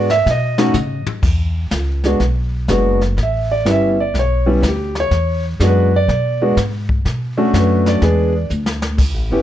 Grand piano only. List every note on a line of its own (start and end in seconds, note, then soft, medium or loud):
0.00 0.11 D5 medium
0.11 0.26 E5 loud
0.31 1.05 D#5 medium
0.58 0.73 A3 medium
0.58 0.73 C#4 medium
0.58 0.73 D#4 medium
0.58 0.74 F#4 medium
2.05 2.19 G#3 medium
2.05 2.19 B3 medium
2.05 2.20 D4 medium
2.05 2.20 F#4 medium
2.69 2.98 G#3 medium
2.69 2.98 B3 medium
2.69 2.99 D4 medium
2.69 2.98 F#4 medium
3.23 3.52 E5 medium
3.52 3.66 D5 medium
3.65 3.95 G3 medium
3.65 3.95 B3 medium
3.65 3.95 C#4 soft
3.65 3.95 E4 medium
3.71 4.00 E5 medium
4.00 4.15 D5 medium
4.19 4.48 C#5 medium
4.46 4.61 G3 medium
4.46 4.61 B3 medium
4.46 4.61 C#4 medium
4.46 4.49 E4 medium
4.50 4.64 E4 medium
4.69 4.97 G4 medium
5.00 5.43 C#5 medium
5.60 5.89 G#3 medium
5.60 5.90 B3 medium
5.60 5.90 D4 medium
5.60 5.90 F#4 medium
5.67 5.95 B4 medium
5.96 6.55 D5 loud
6.41 6.56 G#3 medium
6.41 6.56 B3 medium
6.41 6.56 D4 medium
6.41 6.56 F#4 medium
7.37 7.99 A3 medium
7.37 7.99 C#4 medium
7.37 7.99 D4 medium
7.37 8.00 F#4 medium
7.59 7.88 B4 medium
7.88 8.48 D5 medium
8.02 8.32 G#3 medium
8.02 8.32 B3 medium
8.02 8.32 D4 medium
8.02 8.32 G#4 medium
9.32 9.42 B3 medium
9.32 9.42 C#4 medium
9.32 9.42 E4 medium
9.32 9.42 G4 medium